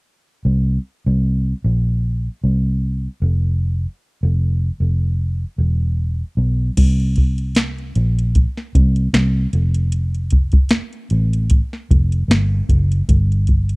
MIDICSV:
0, 0, Header, 1, 3, 480
1, 0, Start_track
1, 0, Tempo, 789474
1, 277, Time_signature, 4, 2, 24, 8
1, 8366, End_track
2, 0, Start_track
2, 0, Title_t, "Fingered electric bass"
2, 0, Program_c, 0, 33
2, 273, Note_on_c, 0, 36, 84
2, 467, Note_off_c, 0, 36, 0
2, 647, Note_on_c, 0, 36, 83
2, 927, Note_off_c, 0, 36, 0
2, 1000, Note_on_c, 0, 34, 81
2, 1384, Note_off_c, 0, 34, 0
2, 1481, Note_on_c, 0, 36, 71
2, 1865, Note_off_c, 0, 36, 0
2, 1956, Note_on_c, 0, 29, 87
2, 2342, Note_off_c, 0, 29, 0
2, 2572, Note_on_c, 0, 29, 87
2, 2851, Note_off_c, 0, 29, 0
2, 2920, Note_on_c, 0, 29, 75
2, 3304, Note_off_c, 0, 29, 0
2, 3395, Note_on_c, 0, 28, 78
2, 3782, Note_off_c, 0, 28, 0
2, 3873, Note_on_c, 0, 35, 78
2, 4069, Note_off_c, 0, 35, 0
2, 4117, Note_on_c, 0, 36, 84
2, 4815, Note_off_c, 0, 36, 0
2, 4839, Note_on_c, 0, 34, 77
2, 5137, Note_off_c, 0, 34, 0
2, 5319, Note_on_c, 0, 36, 89
2, 5512, Note_off_c, 0, 36, 0
2, 5553, Note_on_c, 0, 36, 79
2, 5748, Note_off_c, 0, 36, 0
2, 5795, Note_on_c, 0, 29, 88
2, 6564, Note_off_c, 0, 29, 0
2, 6755, Note_on_c, 0, 33, 69
2, 7053, Note_off_c, 0, 33, 0
2, 7239, Note_on_c, 0, 29, 85
2, 7430, Note_off_c, 0, 29, 0
2, 7467, Note_on_c, 0, 31, 78
2, 7663, Note_off_c, 0, 31, 0
2, 7716, Note_on_c, 0, 30, 87
2, 7908, Note_off_c, 0, 30, 0
2, 7956, Note_on_c, 0, 31, 90
2, 8366, Note_off_c, 0, 31, 0
2, 8366, End_track
3, 0, Start_track
3, 0, Title_t, "Drums"
3, 4117, Note_on_c, 9, 42, 66
3, 4118, Note_on_c, 9, 49, 83
3, 4119, Note_on_c, 9, 36, 86
3, 4178, Note_off_c, 9, 42, 0
3, 4178, Note_off_c, 9, 49, 0
3, 4180, Note_off_c, 9, 36, 0
3, 4255, Note_on_c, 9, 42, 31
3, 4316, Note_off_c, 9, 42, 0
3, 4351, Note_on_c, 9, 42, 55
3, 4362, Note_on_c, 9, 36, 76
3, 4412, Note_off_c, 9, 42, 0
3, 4423, Note_off_c, 9, 36, 0
3, 4487, Note_on_c, 9, 42, 45
3, 4548, Note_off_c, 9, 42, 0
3, 4590, Note_on_c, 9, 42, 79
3, 4599, Note_on_c, 9, 38, 102
3, 4651, Note_off_c, 9, 42, 0
3, 4660, Note_off_c, 9, 38, 0
3, 4733, Note_on_c, 9, 42, 28
3, 4794, Note_off_c, 9, 42, 0
3, 4837, Note_on_c, 9, 42, 68
3, 4897, Note_off_c, 9, 42, 0
3, 4977, Note_on_c, 9, 42, 54
3, 5038, Note_off_c, 9, 42, 0
3, 5077, Note_on_c, 9, 42, 70
3, 5080, Note_on_c, 9, 36, 81
3, 5138, Note_off_c, 9, 42, 0
3, 5141, Note_off_c, 9, 36, 0
3, 5213, Note_on_c, 9, 38, 28
3, 5274, Note_off_c, 9, 38, 0
3, 5320, Note_on_c, 9, 36, 85
3, 5321, Note_on_c, 9, 42, 61
3, 5381, Note_off_c, 9, 36, 0
3, 5382, Note_off_c, 9, 42, 0
3, 5447, Note_on_c, 9, 42, 52
3, 5508, Note_off_c, 9, 42, 0
3, 5557, Note_on_c, 9, 38, 93
3, 5558, Note_on_c, 9, 42, 90
3, 5618, Note_off_c, 9, 38, 0
3, 5619, Note_off_c, 9, 42, 0
3, 5794, Note_on_c, 9, 42, 60
3, 5855, Note_off_c, 9, 42, 0
3, 5924, Note_on_c, 9, 42, 51
3, 5985, Note_off_c, 9, 42, 0
3, 6032, Note_on_c, 9, 42, 72
3, 6092, Note_off_c, 9, 42, 0
3, 6168, Note_on_c, 9, 42, 29
3, 6229, Note_off_c, 9, 42, 0
3, 6265, Note_on_c, 9, 42, 59
3, 6277, Note_on_c, 9, 36, 79
3, 6326, Note_off_c, 9, 42, 0
3, 6338, Note_off_c, 9, 36, 0
3, 6394, Note_on_c, 9, 42, 45
3, 6402, Note_on_c, 9, 36, 91
3, 6455, Note_off_c, 9, 42, 0
3, 6463, Note_off_c, 9, 36, 0
3, 6500, Note_on_c, 9, 42, 72
3, 6509, Note_on_c, 9, 38, 98
3, 6561, Note_off_c, 9, 42, 0
3, 6570, Note_off_c, 9, 38, 0
3, 6643, Note_on_c, 9, 42, 28
3, 6704, Note_off_c, 9, 42, 0
3, 6749, Note_on_c, 9, 42, 66
3, 6810, Note_off_c, 9, 42, 0
3, 6890, Note_on_c, 9, 42, 54
3, 6951, Note_off_c, 9, 42, 0
3, 6990, Note_on_c, 9, 42, 86
3, 6997, Note_on_c, 9, 36, 84
3, 7051, Note_off_c, 9, 42, 0
3, 7057, Note_off_c, 9, 36, 0
3, 7133, Note_on_c, 9, 38, 27
3, 7193, Note_off_c, 9, 38, 0
3, 7239, Note_on_c, 9, 36, 93
3, 7243, Note_on_c, 9, 42, 62
3, 7300, Note_off_c, 9, 36, 0
3, 7303, Note_off_c, 9, 42, 0
3, 7370, Note_on_c, 9, 42, 47
3, 7431, Note_off_c, 9, 42, 0
3, 7484, Note_on_c, 9, 38, 106
3, 7486, Note_on_c, 9, 42, 79
3, 7545, Note_off_c, 9, 38, 0
3, 7546, Note_off_c, 9, 42, 0
3, 7716, Note_on_c, 9, 36, 80
3, 7719, Note_on_c, 9, 42, 64
3, 7777, Note_off_c, 9, 36, 0
3, 7780, Note_off_c, 9, 42, 0
3, 7853, Note_on_c, 9, 42, 50
3, 7914, Note_off_c, 9, 42, 0
3, 7957, Note_on_c, 9, 36, 83
3, 7958, Note_on_c, 9, 42, 73
3, 8018, Note_off_c, 9, 36, 0
3, 8019, Note_off_c, 9, 42, 0
3, 8098, Note_on_c, 9, 42, 35
3, 8159, Note_off_c, 9, 42, 0
3, 8190, Note_on_c, 9, 42, 55
3, 8199, Note_on_c, 9, 36, 70
3, 8251, Note_off_c, 9, 42, 0
3, 8260, Note_off_c, 9, 36, 0
3, 8325, Note_on_c, 9, 42, 45
3, 8366, Note_off_c, 9, 42, 0
3, 8366, End_track
0, 0, End_of_file